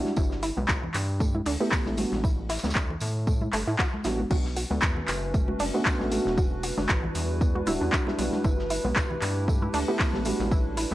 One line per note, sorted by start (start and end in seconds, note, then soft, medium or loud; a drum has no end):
0.05 snare soft
0.05 high conga medium
0.16 0.51 G1 loud
0.16 0.25 E4 medium
0.16 kick loud
0.16 tambourine medium
0.31 snare soft
0.43 0.51 E4 medium
0.43 open hi-hat medium
0.43 tambourine medium
0.57 0.66 B1 medium
0.57 0.60 B3 medium
0.57 high conga medium
0.68 0.89 B1 medium
0.68 kick medium
0.68 snare loud
0.68 clap loud
0.68 tambourine medium
0.84 low conga medium
0.94 1.42 G2 loud
0.94 clap medium
0.94 open hi-hat medium
0.94 tambourine medium
1.20 1.28 A3 medium
1.20 kick loud
1.20 tambourine medium
1.35 1.41 E4 medium
1.35 high conga medium
1.46 1.57 D2 medium
1.46 1.51 D4 loud
1.46 open hi-hat medium
1.60 1.83 A3 medium
1.60 1.83 B3 medium
1.60 1.63 B3 medium
1.60 1.83 E4 medium
1.60 1.83 G4 loud
1.71 kick loud
1.71 snare loud
1.71 clap loud
1.71 tambourine medium
1.86 2.05 A1 medium
1.86 1.96 A3 medium
1.86 1.96 B3 medium
1.86 1.96 E4 medium
1.86 1.96 G4 medium
1.86 snare soft
1.86 high conga medium
1.97 2.15 G3 medium
1.97 2.03 A3 medium
1.97 2.15 B3 medium
1.97 2.15 D4 medium
1.97 2.15 F#4 medium
1.97 open hi-hat medium
1.97 tambourine medium
2.12 2.58 A1 loud
2.12 snare soft
2.12 high conga medium
2.24 2.32 E4 medium
2.24 kick loud
2.24 tambourine medium
2.49 2.58 E4 medium
2.49 snare medium
2.49 open hi-hat loud
2.49 tambourine medium
2.57 snare medium
2.57 tambourine medium
2.64 2.73 D2 medium
2.64 2.66 B3 medium
2.64 snare medium
2.64 tambourine medium
2.64 high conga medium
2.69 snare medium
2.69 tambourine medium
2.75 2.95 D2 medium
2.75 kick loud
2.75 snare loud
2.75 clap loud
2.75 tambourine medium
2.90 low conga medium
3.00 3.48 A2 medium
3.00 open hi-hat medium
3.00 tambourine medium
3.27 3.35 A3 medium
3.27 kick loud
3.27 tambourine medium
3.41 3.48 E4 medium
3.41 high conga medium
3.53 3.64 G1 medium
3.53 3.61 A3 loud
3.53 clap medium
3.53 open hi-hat loud
3.53 tambourine medium
3.67 3.76 A2 medium
3.67 3.72 E4 medium
3.79 3.84 F#4 loud
3.79 kick loud
3.79 snare loud
3.79 clap loud
3.79 tambourine medium
3.94 high conga medium
4.04 4.25 A1 medium
4.04 4.16 G3 medium
4.04 4.16 B3 medium
4.04 4.16 D4 medium
4.04 4.10 E4 medium
4.04 4.16 F#4 medium
4.04 snare loud
4.04 open hi-hat medium
4.04 tambourine medium
4.20 high conga medium
4.31 4.65 B1 loud
4.31 6.36 A3 medium
4.31 6.36 C#4 medium
4.31 6.35 D4 medium
4.31 4.39 F#4 medium
4.31 8.40 F#4 medium
4.31 10.94 B4 medium
4.31 kick loud
4.31 crash medium
4.31 tambourine medium
4.45 snare soft
4.56 4.64 F#4 medium
4.56 open hi-hat loud
4.56 tambourine medium
4.71 4.79 D2 medium
4.71 4.73 B3 medium
4.71 high conga loud
4.82 5.02 E2 medium
4.82 kick loud
4.82 snare loud
4.82 clap loud
4.82 tambourine medium
4.97 low conga medium
5.08 5.55 F#1 medium
5.08 clap medium
5.08 open hi-hat medium
5.08 tambourine medium
5.34 5.42 A3 medium
5.34 kick loud
5.34 tambourine medium
5.48 5.55 F#4 medium
5.48 high conga medium
5.59 5.71 F#1 medium
5.59 5.65 D4 loud
5.59 open hi-hat medium
5.59 open hi-hat loud
5.74 5.97 A3 medium
5.74 5.97 B3 medium
5.74 5.77 B3 medium
5.74 5.97 D4 medium
5.74 5.97 F#4 loud
5.85 kick loud
5.85 snare loud
5.85 clap loud
5.85 tambourine medium
6.00 6.19 A1 medium
6.00 6.10 A3 medium
6.00 6.10 B3 medium
6.00 6.10 D4 medium
6.00 6.10 F#4 medium
6.00 snare medium
6.00 high conga medium
6.11 6.29 A3 medium
6.11 6.17 A3 medium
6.11 6.29 B3 medium
6.11 6.29 D4 medium
6.11 6.29 F#4 medium
6.11 open hi-hat medium
6.11 tambourine medium
6.25 6.72 E1 loud
6.25 snare soft
6.25 high conga medium
6.37 8.42 G3 medium
6.37 10.94 D4 medium
6.37 8.42 E4 medium
6.37 6.45 F#4 medium
6.37 kick loud
6.37 tambourine medium
6.63 6.71 F#4 medium
6.63 open hi-hat loud
6.63 tambourine medium
6.78 6.86 G1 medium
6.78 6.80 D4 medium
6.78 snare soft
6.78 high conga loud
6.89 7.09 A1 medium
6.89 kick loud
6.89 snare loud
6.89 clap loud
6.89 tambourine medium
7.04 low conga medium
7.15 7.62 E2 loud
7.15 open hi-hat loud
7.15 tambourine medium
7.41 7.49 B3 medium
7.41 kick loud
7.41 tambourine medium
7.55 7.62 F#4 medium
7.55 high conga medium
7.67 7.78 D1 medium
7.67 8.04 G3 medium
7.67 8.04 D4 medium
7.67 7.72 E4 loud
7.67 8.04 E4 medium
7.67 8.04 F#4 loud
7.67 open hi-hat loud
7.67 tambourine medium
7.81 7.90 E2 medium
7.81 7.84 D4 medium
7.92 kick loud
7.92 snare loud
7.92 clap loud
7.92 tambourine medium
8.07 8.16 G3 medium
8.07 8.16 D4 medium
8.07 8.16 E4 medium
8.07 8.16 G4 loud
8.07 snare medium
8.07 high conga medium
8.18 8.29 B1 medium
8.18 8.36 G3 medium
8.18 8.24 B3 medium
8.18 8.36 D4 medium
8.18 8.36 E4 medium
8.18 8.36 F#4 medium
8.18 open hi-hat loud
8.18 tambourine medium
8.32 snare soft
8.32 high conga medium
8.44 8.79 G1 loud
8.44 10.24 A3 medium
8.44 8.52 E4 medium
8.44 10.24 E4 medium
8.44 10.24 G4 medium
8.44 kick loud
8.44 tambourine medium
8.59 snare soft
8.70 8.78 E4 medium
8.70 open hi-hat loud
8.70 tambourine medium
8.85 8.93 B1 medium
8.85 8.87 B3 medium
8.85 high conga loud
8.96 9.16 B1 medium
8.96 kick loud
8.96 snare loud
8.96 clap loud
8.96 tambourine medium
9.11 low conga medium
9.22 9.69 G2 loud
9.22 clap medium
9.22 open hi-hat loud
9.22 tambourine medium
9.48 9.56 A3 medium
9.48 kick loud
9.48 tambourine medium
9.62 9.69 E4 medium
9.62 high conga medium
9.74 9.84 D2 medium
9.74 9.79 D4 loud
9.74 open hi-hat loud
9.74 open hi-hat medium
9.88 10.10 A3 medium
9.88 10.10 B3 medium
9.88 9.91 B3 medium
9.88 10.11 E4 medium
9.88 10.11 G4 loud
9.99 kick loud
9.99 snare loud
9.99 clap loud
9.99 tambourine medium
10.13 10.33 A1 medium
10.13 10.24 A3 medium
10.13 10.24 B3 medium
10.13 10.24 E4 medium
10.13 10.24 G4 medium
10.13 snare medium
10.13 high conga medium
10.25 10.43 G3 medium
10.25 10.94 G3 medium
10.25 10.31 A3 medium
10.25 10.43 B3 medium
10.25 10.43 D4 medium
10.25 10.94 E4 medium
10.25 10.94 F#4 medium
10.25 10.43 F#4 medium
10.25 open hi-hat loud
10.25 tambourine medium
10.39 10.86 A1 loud
10.39 snare soft
10.39 high conga medium
10.51 10.59 E4 medium
10.51 kick loud
10.51 tambourine medium
10.77 10.85 E4 medium
10.77 open hi-hat loud
10.77 tambourine medium
10.91 high conga medium